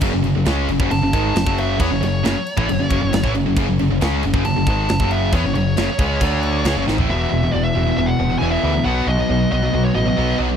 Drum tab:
CC |x-x-x-x-x-x-x-x-|x-x-x-x-x-x-x-x-|x-x-x-x-x-x-x-x-|x-x-x-x-x-x-x---|
SD |----o-------o---|----o-------o---|----o-------o---|----o-------o-o-|
FT |----------------|----------------|----------------|---------------o|
BD |o------o--o--o--|o------o--o--o--|o------o--o--o--|o-----o-o-------|

CC |----------------|----------------|
SD |----------------|----------------|
FT |----------------|----------------|
BD |----------------|----------------|